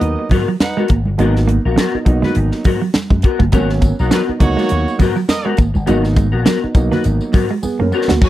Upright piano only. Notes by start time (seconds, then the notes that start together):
Already playing: F#3 A#3 B3 D#4
1.18 F#3 A#3 B3 D#4
1.92 B3 D#4
2.05 F#3 A#3 B3 D#4
3.52 F#3 A#3 B3 C#4
4.27 B3 D#4
4.40 F#3 A#3 B3 D#4
5.86 F#3 A#3 B3 D#4
6.62 B3 D#4
6.74 F#3 A#3 B3 D#4
7.63 B3 G#4
7.79 C#4 A#4
8.09 A#3 F#4